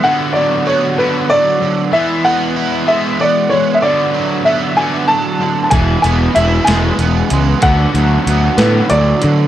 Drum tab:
HH |------|------|------|xxxxxx|
SD |------|------|------|---o--|
BD |------|------|------|o-----|

HH |xxxxxx|
SD |---o--|
BD |o-----|